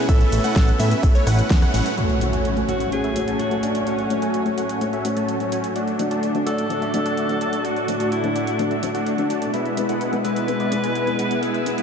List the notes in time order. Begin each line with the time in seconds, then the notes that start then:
Already playing: B2 C#4
0.09 A1 A3 B3 C#4 E4 A4 B4 E5, kick, closed hi-hat, ride, shaker
0.21 closed hi-hat, shaker
0.32 A1, open hi-hat, ride, shaker
0.44 A3 C#4 E4 B4 F#5, closed hi-hat, shaker
0.56 A1, kick, snare, closed hi-hat, ride, shaker
0.68 closed hi-hat, shaker
0.80 A2 A3 C#4 E4 B4 E5, snare, open hi-hat, ride, shaker
0.91 closed hi-hat, shaker
1.03 A1, kick, closed hi-hat, ride, shaker
1.15 A3 C#4 E4 B4 C#5, closed hi-hat, shaker
1.27 A1 A3 C#4 E4 B4 F#5, cross-stick, open hi-hat, ride, shaker
1.39 closed hi-hat, shaker
1.50 E2, kick, snare, closed hi-hat, ride, shaker
1.62 A3 C#4 E4 B4 F#5, cross-stick, closed hi-hat, shaker
1.74 A1 A3 C#4 E4 B4 F#5, open hi-hat, ride, shaker
1.86 closed hi-hat, shaker
1.98 A2 F#3 A3 C#4 F#4 C#5 F#5, closed hi-hat, impact
2.09 closed hi-hat
2.21 A3 C#4 F#4 C#5, closed hi-hat
2.33 A3 C#4 F#4 C#5 G#5, closed hi-hat
2.45 closed hi-hat
2.56 A3 C#4 F#4 C#5, closed hi-hat
2.68 A3 C#4 F#4 C#5 F#5, closed hi-hat
2.80 closed hi-hat
2.92 A3 C#4 F#4 G#4 C#5, closed hi-hat
3.04 A3 C#4 F#4 C#5 E5, closed hi-hat
3.15 A3 C#4 F#4 C#5, closed hi-hat
3.28 A3 C#4 F#4 C#5 A5, closed hi-hat
3.39 F#4, closed hi-hat
3.51 A3 C#4 F#4 C#5, closed hi-hat
3.63 A3 C#4 D4 F#4 C#5 G#5, closed hi-hat
3.75 closed hi-hat
3.87 A3 C#4 F#4 C#5 F#5, closed hi-hat
3.98 closed hi-hat
4.10 A3 C#4 F#4 C#5, closed hi-hat
4.22 A3 C#4 F#4 C#5 G#5, closed hi-hat
4.34 closed hi-hat
4.45 A3 C#4 F#4 C#5, closed hi-hat
4.58 A3 C#4 F#4 C#5 F#5, closed hi-hat
4.69 closed hi-hat
4.81 A3 C#4 F#4 C#5, closed hi-hat
4.93 A3 C#4 F#4 C#5 E5, closed hi-hat
5.04 A3 C#4 F#4 C#5, closed hi-hat
5.17 A3 C#4 F#4 C#5 A5, closed hi-hat
5.28 closed hi-hat
5.40 A3 C#4 F#4 C#5, closed hi-hat
5.52 A3 C#4 F#4 C#5 G#5, closed hi-hat
5.64 closed hi-hat
5.76 A2 A3 D4 F#4 D5 F#5, closed hi-hat
5.88 closed hi-hat
5.99 D3 A3 D4 F#4 D5, closed hi-hat
6.11 A3 D4 F#4 D5 A5, closed hi-hat
6.23 closed hi-hat
6.34 D3 A3 D4 F#4 D5, closed hi-hat
6.46 A3 D4 F#4 A4 D5 F#5, closed hi-hat
6.58 closed hi-hat
6.70 D3 A3 D4 F#4 D5, closed hi-hat
6.82 A3 D4 F#4 D5 E5, closed hi-hat
6.93 D3 A3 D4 F#4 D5, closed hi-hat
7.05 A3 D4 F#4 D5 F#5, closed hi-hat
7.17 closed hi-hat
7.29 D3 A3 D4 F#4 D5, closed hi-hat
7.41 A3 D4 F#4 D5 A5, closed hi-hat
7.53 closed hi-hat
7.65 A3 D4 F#4 D5 F#5, closed hi-hat
7.76 closed hi-hat
7.88 D3 A3 D4 F#4 D5, closed hi-hat
8.00 A3 D4 F#4 D5 A5, closed hi-hat
8.12 E4, closed hi-hat
8.23 D3 A3 D4 F#4 D5, closed hi-hat
8.36 A3 D4 F#4 D5 F#5, closed hi-hat
8.47 closed hi-hat
8.59 D3 A3 D4 F#4 D5, closed hi-hat
8.71 A3 D4 F#4 D5 E5, closed hi-hat
8.82 D3 A3 D4 F#4 D5, closed hi-hat
8.95 A3 D4 F#4 D5 F#5, closed hi-hat
9.06 closed hi-hat
9.18 D3 A3 D4 F#4 D5, closed hi-hat
9.30 A3 D4 F#4 D5 A5, closed hi-hat
9.42 closed hi-hat
9.54 B2 G#3 B3 E4 B4 E5, closed hi-hat
9.65 closed hi-hat
9.77 G#3 B3 E4 B4, closed hi-hat
9.89 G#3 B3 E4 B4 F#5, closed hi-hat
10.01 closed hi-hat
10.12 G#3 B3 E4 B4, closed hi-hat
10.24 G#3 B3 E4 B4 E5, closed hi-hat
10.36 closed hi-hat
10.48 G#3 B3 E4 B4, closed hi-hat
10.60 G#3 B3 E4 B4 D5, closed hi-hat
10.71 G#3 B3 E4 B4, closed hi-hat
10.84 G#3 B3 E4 B4 G#5, closed hi-hat
10.95 closed hi-hat
11.07 G#3 B3 E4 B4, closed hi-hat
11.19 G#3 B3 E4 B4 F#5, closed hi-hat
11.31 closed hi-hat
11.42 G#3 B3 E4 G#4 B4 E5, closed hi-hat
11.54 closed hi-hat
11.66 G#3 B3 E4 B4, closed hi-hat
11.78 G#3 B3 E4 B4 F#5, closed hi-hat